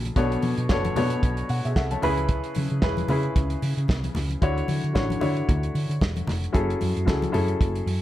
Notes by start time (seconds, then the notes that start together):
Already playing: F#3 C#4 E4 G#4 A4
0.05 closed hi-hat, high conga
0.16 B1 B2 B3 D4 A4 C#5, kick, closed hi-hat
0.32 closed hi-hat
0.42 B2, open hi-hat, muted conga, high conga
0.57 B2, closed hi-hat
0.69 F#1 B2 B3 D4 A4 C#5, kick, snare, muted conga
0.85 closed hi-hat, high conga
0.95 B2 B3 D4 A4 C#5, open hi-hat, low conga
1.10 closed hi-hat
1.23 B1, kick, closed hi-hat
1.37 closed hi-hat
1.49 B2 F#5, open hi-hat
1.65 B2 G#4 E5, closed hi-hat
1.76 C2 A4 E5 F#5, kick, snare
1.91 C#5 A5, closed hi-hat, high conga
2.02 C#2 C#3 C#4 E4 G#4 B4, open hi-hat, muted conga, low conga
2.17 closed hi-hat, high conga
2.29 kick, closed hi-hat
2.44 closed hi-hat
2.55 C#3, open hi-hat, muted conga, high conga
2.70 C#3, closed hi-hat
2.82 E1 C#3 C#4 E4 G#4 B4, kick, snare, muted conga
2.97 closed hi-hat, high conga
3.08 C#3 C#4 E4 G#4 B4, open hi-hat, muted conga, low conga
3.23 closed hi-hat
3.36 C#2, kick, closed hi-hat, muted conga
3.50 closed hi-hat
3.62 C#3, open hi-hat, muted conga
3.77 C#3, closed hi-hat
3.88 C2, kick, snare, muted conga
4.04 closed hi-hat, high conga
4.15 C#2, snare, open hi-hat, muted conga, low conga
4.30 closed hi-hat, high conga
4.41 D2 D3 D4 E4 F#4 C#5, kick, closed hi-hat, muted conga
4.58 closed hi-hat
4.68 D3, open hi-hat, muted conga, high conga
4.84 D3, closed hi-hat
4.94 A1 D3 D4 E4 F#4 C#5, kick, snare, muted conga
5.10 closed hi-hat, high conga
5.20 D3 D4 E4 F#4 C#5, open hi-hat, muted conga, low conga
5.37 closed hi-hat
5.49 D2, kick, closed hi-hat, muted conga, low conga
5.63 closed hi-hat
5.75 D3, open hi-hat, muted conga
5.89 D3, closed hi-hat
6.01 E1, kick, snare, muted conga
6.16 closed hi-hat, high conga
6.27 F1, snare, open hi-hat, low conga
6.42 closed hi-hat, high conga
6.53 F#1 F#3 C#4 E4 G#4 A4, kick, closed hi-hat, muted conga
6.70 closed hi-hat
6.81 F#2, open hi-hat, muted conga, high conga
6.97 F#2, closed hi-hat
7.05 C#2 F#3 C#4 E4 G#4 A4, kick, snare, muted conga
7.22 closed hi-hat, high conga
7.32 F#2 F#3 C#4 E4 G#4 A4, open hi-hat, muted conga, low conga
7.48 closed hi-hat
7.61 F#1, kick, closed hi-hat
7.75 closed hi-hat
7.86 F#2, open hi-hat, muted conga